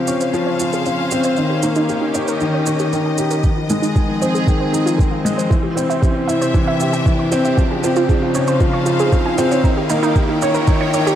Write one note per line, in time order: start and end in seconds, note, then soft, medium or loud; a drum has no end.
0.00 1.37 C#3 medium
0.00 0.34 F3 medium
0.00 1.12 C4 medium
0.00 3.44 C#4 medium
0.00 0.13 G4 medium
0.00 2.20 F5 medium
0.00 riser medium
0.07 0.23 C#4 medium
0.07 0.20 C#5 medium
0.07 shaker medium
0.21 0.26 C5 medium
0.21 2.19 C5 medium
0.21 shaker soft
0.34 0.48 F3 loud
0.34 0.42 F4 medium
0.34 shaker soft
0.47 0.55 C#5 loud
0.60 0.74 F4 medium
0.60 0.72 F4 medium
0.60 shaker medium
0.73 0.85 G#4 medium
0.73 shaker soft
0.86 1.01 F3 medium
0.86 0.91 C5 medium
0.86 shaker soft
0.99 1.07 G#5 medium
1.11 1.26 C4 medium
1.11 1.24 F4 medium
1.11 shaker medium
1.24 1.29 C5 medium
1.24 shaker soft
1.36 3.44 D#3 medium
1.36 1.62 D#3 medium
1.36 1.46 D#4 medium
1.36 shaker soft
1.50 1.55 G4 medium
1.62 1.88 A#3 medium
1.62 1.75 D#4 medium
1.62 shaker medium
1.75 1.85 D#4 loud
1.75 3.44 G4 medium
1.75 shaker soft
1.89 2.14 D#3 medium
1.89 2.01 G4 medium
1.89 shaker soft
2.02 2.10 D#4 medium
2.14 2.30 C#4 medium
2.14 2.27 C#5 medium
2.14 shaker medium
2.28 2.33 A#4 loud
2.28 5.51 D#5 medium
2.28 shaker soft
2.40 2.56 D#3 medium
2.40 2.49 D#4 medium
2.40 shaker soft
2.54 2.62 C#5 loud
2.66 2.91 C#4 medium
2.66 2.79 D#4 medium
2.66 shaker medium
2.79 2.92 G4 loud
2.79 shaker soft
2.93 3.17 D#3 medium
2.93 2.98 A#4 medium
2.93 shaker soft
3.06 3.14 G5 medium
3.18 3.31 D#4 medium
3.18 3.43 G4 medium
3.18 shaker medium
3.31 3.36 A#4 medium
3.31 shaker soft
3.44 3.69 D#3 medium
3.44 5.51 F3 medium
3.44 3.52 D#4 medium
3.44 kick medium
3.44 shaker soft
3.57 3.62 F4 medium
3.70 3.95 G#3 medium
3.70 3.81 D#4 medium
3.70 shaker medium
3.79 3.91 D#4 loud
3.79 5.51 G#4 medium
3.79 shaker soft
3.96 4.20 D#3 medium
3.96 4.08 F4 medium
3.96 kick medium
3.96 shaker soft
4.08 7.58 C4 medium
4.08 4.17 D#4 medium
4.22 4.37 C4 medium
4.22 4.34 C5 medium
4.22 shaker medium
4.34 4.40 G#4 loud
4.34 shaker soft
4.47 4.62 D#3 medium
4.47 4.56 D#4 medium
4.47 kick medium
4.47 shaker soft
4.60 4.69 C5 loud
4.73 4.85 D#4 medium
4.73 4.88 D#4 medium
4.73 shaker medium
4.86 4.98 F4 loud
4.86 shaker soft
4.98 5.14 D#3 medium
4.98 5.04 G#4 medium
4.98 kick loud
4.98 shaker soft
5.11 5.20 F5 medium
5.25 5.40 G#3 loud
5.25 5.37 D#4 medium
5.25 shaker medium
5.38 5.46 C5 medium
5.38 shaker soft
5.50 7.58 C3 medium
5.50 5.76 E3 medium
5.50 5.59 E4 medium
5.50 kick loud
5.50 shaker soft
5.63 5.68 G4 medium
5.76 6.01 C4 medium
5.76 5.89 E4 medium
5.76 shaker medium
5.90 5.98 E4 loud
5.90 shaker soft
6.02 6.27 E3 medium
6.02 6.15 G4 medium
6.02 kick medium
6.02 shaker soft
6.15 6.24 E4 medium
6.26 6.43 E4 medium
6.26 7.58 E5 medium
6.26 6.40 E5 medium
6.26 shaker medium
6.42 8.41 G4 medium
6.42 6.47 C5 loud
6.42 shaker soft
6.54 6.69 E3 medium
6.54 6.63 E4 medium
6.54 kick medium
6.54 shaker soft
6.67 6.76 E5 loud
6.80 6.93 E4 medium
6.80 6.95 G4 medium
6.80 shaker medium
6.93 7.06 G4 medium
6.93 shaker soft
7.06 7.21 E3 medium
7.06 7.11 C5 medium
7.06 kick loud
7.06 shaker soft
7.19 7.27 C6 medium
7.32 7.47 C4 loud
7.32 7.44 E4 medium
7.32 shaker medium
7.45 7.53 E5 medium
7.45 shaker soft
7.57 9.65 C#3 medium
7.57 7.82 F3 medium
7.57 7.66 F4 medium
7.57 kick medium
7.57 shaker soft
7.71 7.76 G#4 medium
7.83 8.08 C4 loud
7.83 7.95 F4 loud
7.83 shaker medium
7.96 8.05 F4 loud
7.96 shaker soft
8.09 8.34 F3 medium
8.09 8.22 G#4 medium
8.09 kick medium
8.09 shaker soft
8.22 8.31 F4 medium
8.34 8.50 C#4 medium
8.34 8.47 C#5 loud
8.34 shaker medium
8.47 8.53 C5 loud
8.47 9.65 C5 medium
8.47 10.38 F5 medium
8.47 shaker soft
8.60 8.76 F3 loud
8.60 8.69 F4 medium
8.60 kick loud
8.60 shaker soft
8.73 8.82 C#5 loud
8.86 8.99 F4 medium
8.86 9.02 F4 medium
8.86 shaker medium
8.99 9.12 G#4 loud
8.99 shaker soft
9.12 9.28 F3 medium
9.12 9.18 C5 medium
9.12 kick medium
9.12 shaker soft
9.26 9.34 G#5 medium
9.38 9.53 C4 loud
9.38 9.51 F4 medium
9.38 shaker medium
9.51 9.60 C#5 medium
9.51 shaker soft
9.63 11.15 D#3 medium
9.63 9.89 D#3 medium
9.63 9.73 D#4 medium
9.63 kick medium
9.63 shaker soft
9.77 9.82 G4 medium
9.89 10.15 A#3 loud
9.89 10.02 D#4 loud
9.89 11.15 G5 medium
9.89 shaker medium
10.03 10.11 D#4 loud
10.03 shaker soft
10.16 10.41 D#3 medium
10.16 10.29 G4 medium
10.16 kick loud
10.16 shaker soft
10.29 10.38 D#4 medium
10.42 10.57 C#4 medium
10.42 11.15 D#4 medium
10.42 10.55 C#5 medium
10.42 shaker medium
10.54 10.60 A#4 loud
10.54 11.15 C#5 medium
10.54 shaker soft
10.67 10.83 D#3 loud
10.67 10.76 D#4 medium
10.67 kick loud
10.67 shaker soft
10.81 10.89 C#5 loud
10.93 11.15 D#3 medium
10.93 11.06 C#5 medium
10.93 shaker medium
11.07 11.15 G4 loud
11.07 shaker soft